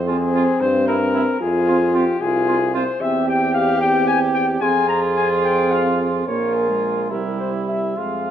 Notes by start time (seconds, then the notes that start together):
Already playing: F2 C4
0.07 C4 F4 G#4
0.34 C4 F4
0.61 G2 C5
0.87 C4 E4 A#4
1.13 C4 E4
1.40 F2 F4 G#4
1.67 C4 F4
1.94 C4 F4 G4
2.21 C2 F4 G#4
2.48 C4 F4
2.74 C4 F4 C5
3.00 E2 C4 G4 E5
3.28 G5
3.54 F5
3.81 C4 G4 G5
4.08 G#5
4.35 G5
4.61 F2 C4 F4 G#4 G#5
4.89 A#5
5.17 G#5
5.44 G5
5.71 F5
6.27 A#1 A#3 F4 A#4 C#5
6.54 G#4
6.69 G#3
7.10 C2 G3 E4 G4 A#4
7.39 C5
7.69 E5
7.97 F2 G#3 F4 G#4 F5